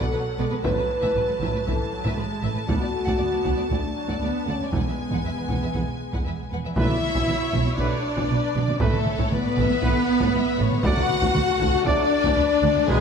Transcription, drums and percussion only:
0.01 taiko medium
0.64 taiko medium
1.03 taiko medium
1.42 taiko medium
1.67 taiko medium
2.06 taiko medium
2.69 taiko medium
3.07 taiko medium
3.45 taiko medium
3.71 taiko medium
4.09 taiko medium
4.72 taiko medium
5.11 taiko medium
5.49 taiko medium
5.74 taiko medium
6.13 taiko medium
6.76 taiko loud
6.89 taiko mid soft
7.02 taiko mid soft
7.15 taiko medium
7.28 taiko mid medium
7.53 taiko medium
7.78 taiko medium
8.17 taiko medium
8.68 taiko mid soft
8.80 taiko loud
8.93 taiko mid soft
9.06 taiko mid medium
9.19 taiko medium
9.32 taiko mid medium
9.57 taiko medium
9.83 taiko medium
10.20 taiko medium
10.71 taiko mid medium
10.84 taiko loud
10.97 taiko mid soft
11.09 taiko mid medium
11.22 taiko medium
11.35 taiko mid medium
11.60 taiko medium
11.85 taiko medium
12.24 taiko medium
12.75 taiko mid medium
12.88 taiko loud

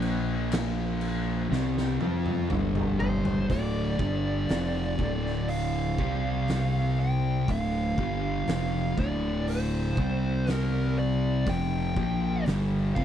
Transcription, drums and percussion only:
0.02 crash medium
0.52 snare loud
0.52 crash medium
1.01 crash medium
1.52 snare medium
1.78 snare medium
2.01 high tom medium
2.26 high tom medium
2.50 mid tom medium
2.75 mid tom medium
3.00 floor tom loud
3.25 floor tom medium
3.50 kick medium
3.50 open hi-hat soft
3.99 kick loud
4.49 snare loud
4.49 open hi-hat medium
4.99 kick loud
5.26 snare soft
5.48 open hi-hat medium
5.98 kick loud
6.48 snare loud
6.48 open hi-hat medium
7.48 kick loud
7.48 open hi-hat medium
7.98 kick loud
8.47 snare loud
8.47 open hi-hat medium
8.98 kick loud
9.48 open hi-hat medium
9.97 kick loud
10.47 snare loud
10.47 open hi-hat medium
11.46 kick loud
11.46 open hi-hat medium
11.97 kick loud
12.46 snare loud
12.46 open hi-hat medium
12.96 kick medium

